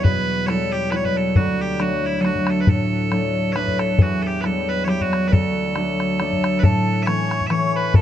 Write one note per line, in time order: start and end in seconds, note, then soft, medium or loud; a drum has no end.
0.00 1.40 E2 medium
0.00 0.45 F#3 soft
0.00 0.47 G3 soft
0.00 1.61 A3 soft
0.00 1.08 D4 medium
0.00 0.50 E4 medium
0.00 0.46 B4 loud
0.04 1.40 B2 medium
0.04 bodhran medium
0.46 0.91 F#3 soft
0.46 0.92 G3 soft
0.46 0.72 A4 medium
0.46 0.50 C#5 medium
0.46 bodhran medium
0.50 0.93 E4 soft
0.72 0.91 G4 medium
0.91 1.40 F#3 soft
0.91 1.40 G3 soft
0.91 3.55 E4 medium
0.91 0.96 B4 medium
0.91 bodhran medium
0.96 1.05 C#5 medium
1.04 1.17 B4 medium
1.04 bodhran soft
1.17 1.36 A4 medium
1.35 4.04 D2 medium
1.35 1.61 F#4 medium
1.35 bodhran medium
1.61 1.82 G4 medium
1.78 2.20 F#3 soft
1.78 2.23 A3 soft
1.78 2.25 D4 soft
1.78 2.06 F#4 medium
1.78 bodhran medium
2.06 2.21 E4 medium
2.20 3.10 F#3 soft
2.20 3.11 A3 soft
2.20 2.25 A4 medium
2.25 3.12 D4 medium
2.25 2.50 F#4 medium
2.25 bodhran soft
2.35 bodhran soft
2.47 2.61 A4 medium
2.47 bodhran medium
2.61 2.69 B4 medium
2.67 4.04 A2 medium
2.67 3.52 A4 medium
2.67 bodhran medium
3.11 3.53 F#3 soft
3.11 3.54 A3 soft
3.11 3.55 D4 soft
3.11 bodhran medium
3.52 4.04 F#3 medium
3.52 5.76 A3 medium
3.52 5.76 D4 medium
3.52 3.79 B4 medium
3.52 3.55 C#5 medium
3.52 bodhran medium
3.68 bodhran soft
3.79 4.02 A4 medium
3.79 bodhran medium
3.99 5.36 E2 medium
3.99 4.22 F#4 medium
3.99 bodhran medium
4.22 4.27 A4 medium
4.27 4.41 G4 medium
4.41 4.86 F#3 soft
4.41 4.86 G3 soft
4.41 4.87 E4 soft
4.41 4.45 B4 medium
4.41 bodhran medium
4.45 4.69 A4 medium
4.69 4.84 B4 medium
4.84 5.36 F#3 soft
4.84 5.36 G3 soft
4.84 7.49 E4 soft
4.84 4.89 C#5 medium
4.84 bodhran medium
4.89 5.02 G4 medium
5.01 5.28 F#4 medium
5.01 bodhran soft
5.13 bodhran medium
5.28 6.68 D2 medium
5.28 5.32 B4 medium
5.32 6.59 A4 medium
5.32 bodhran medium
5.75 6.18 F#3 soft
5.75 6.20 A3 soft
5.75 6.20 D4 medium
5.75 bodhran medium
6.00 bodhran soft
6.20 6.68 F#3 soft
6.20 7.06 A3 soft
6.20 7.13 D4 medium
6.20 bodhran medium
6.33 bodhran soft
6.44 bodhran medium
6.59 7.99 A2 medium
6.59 6.63 B4 medium
6.63 7.03 A4 medium
6.63 7.04 A5 medium
6.63 bodhran medium
7.03 7.49 E3 soft
7.03 7.50 A3 soft
7.03 7.47 C#5 medium
7.03 7.06 E5 medium
7.07 7.51 C#4 medium
7.07 7.47 C#6 medium
7.07 bodhran medium
7.31 bodhran medium
7.41 bodhran soft
7.47 7.99 E3 medium
7.47 8.02 A3 soft
7.47 7.51 E5 medium
7.47 7.73 C#6 medium
7.47 bodhran medium
7.51 8.02 C#4 medium
7.51 7.76 C#5 medium
7.75 7.95 B4 medium
7.75 7.97 B5 medium
7.94 8.02 F#2 medium
7.94 8.02 A4 loud
7.94 8.02 A5 medium
7.94 bodhran medium